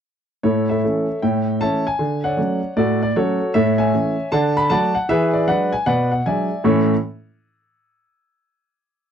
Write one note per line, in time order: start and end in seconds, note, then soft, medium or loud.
0.43 0.77 A2 medium
0.43 0.68 E4 medium
0.43 0.68 A4 medium
0.43 0.69 C#5 medium
0.69 1.19 A4 medium
0.69 1.18 C#5 soft
0.69 1.21 E5 medium
0.84 1.05 E3 soft
0.84 1.05 A3 soft
0.84 1.06 C#4 soft
1.22 1.55 A2 medium
1.22 1.59 C#5 medium
1.22 1.59 E5 medium
1.22 1.61 G5 medium
1.61 1.82 E3 soft
1.61 1.82 A3 soft
1.61 1.83 C#4 soft
1.61 1.84 C#5 medium
1.61 1.85 E5 medium
1.61 1.86 A5 medium
1.87 2.25 G#5 medium
1.99 2.32 D3 medium
2.24 2.73 C#5 medium
2.24 2.73 D5 medium
2.24 2.76 F#5 medium
2.37 2.58 F#3 soft
2.37 2.59 A3 soft
2.37 2.59 C#4 soft
2.77 3.09 A2 medium
2.77 3.01 F#4 medium
2.77 3.01 A4 medium
2.77 3.01 D5 medium
3.02 3.15 D5 medium
3.16 3.37 F#3 soft
3.16 3.37 A3 soft
3.16 3.38 C#4 soft
3.16 3.52 F#4 medium
3.16 3.52 A4 medium
3.16 3.54 C#5 medium
3.54 3.87 A2 medium
3.54 3.78 A4 medium
3.54 3.78 C#5 medium
3.54 3.78 E5 medium
3.78 4.28 C#5 medium
3.78 4.28 E5 medium
3.78 4.31 G#5 medium
3.93 4.14 E3 soft
3.93 4.15 A3 soft
3.93 4.15 C#4 soft
4.32 4.65 D3 medium
4.32 4.56 D5 medium
4.32 4.56 F#5 medium
4.32 4.57 A5 medium
4.57 4.70 B5 loud
4.70 4.91 F#3 soft
4.70 4.91 A3 soft
4.70 4.92 F#4 medium
4.70 4.94 D5 medium
4.70 4.93 F#5 medium
4.70 4.95 A5 loud
4.95 5.08 F#5 medium
5.09 5.42 E3 medium
5.09 5.33 G#4 medium
5.09 5.33 B4 medium
5.09 5.34 E5 loud
5.33 5.47 D5 medium
5.47 5.69 F#3 soft
5.47 5.69 G#3 soft
5.47 5.70 D4 soft
5.47 5.72 B4 medium
5.47 5.72 D5 medium
5.47 5.73 F#5 medium
5.73 5.86 G#5 medium
5.86 6.19 B2 medium
5.86 6.10 B4 medium
5.86 6.10 D5 medium
5.86 6.10 F#5 medium
6.12 6.25 F#5 medium
6.26 6.47 F#3 soft
6.26 6.47 G#3 soft
6.26 6.48 D4 soft
6.26 6.62 D5 medium
6.26 6.62 E5 medium
6.26 6.64 G#5 medium
6.64 6.90 A2 medium
6.64 6.90 E3 medium
6.64 6.90 C#4 medium
6.64 6.90 E4 medium
6.64 6.91 A4 medium
6.64 6.91 C#5 medium
6.64 6.90 C#6 medium